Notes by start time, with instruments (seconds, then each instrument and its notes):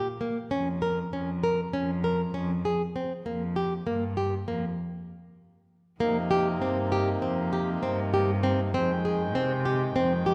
0.21 nylon-string guitar A#3
0.51 cello F2, nylon-string guitar C#4
0.82 nylon-string guitar A#4
1.12 cello F2, nylon-string guitar C#4
1.44 nylon-string guitar A#4
1.73 cello F2, nylon-string guitar C#4
2.04 nylon-string guitar A#4
2.34 cello F2, nylon-string guitar C#4
2.65 nylon-string guitar G#4
2.96 nylon-string guitar C4
3.25 cello F2, nylon-string guitar A#3
3.56 nylon-string guitar G4
3.87 cello G2, nylon-string guitar A#3
4.17 nylon-string guitar G4
4.48 cello F2, nylon-string guitar A#3
6.00 cello F2, harmonium C3 A#3 D#4, nylon-string guitar A#3
6.31 nylon-string guitar G4
6.61 cello G2, nylon-string guitar C4
6.92 nylon-string guitar G4
7.22 cello F2, nylon-string guitar C4
7.53 nylon-string guitar G4
7.83 cello G2, nylon-string guitar C4
8.14 nylon-string guitar G4
8.43 nylon-string guitar C4
8.74 cello F2, harmonium D#3 G#3 G5, nylon-string guitar C4
9.05 nylon-string guitar G#4
9.35 cello C3, nylon-string guitar C4
9.65 nylon-string guitar G4
9.96 cello F2, nylon-string guitar C4
10.26 nylon-string guitar G4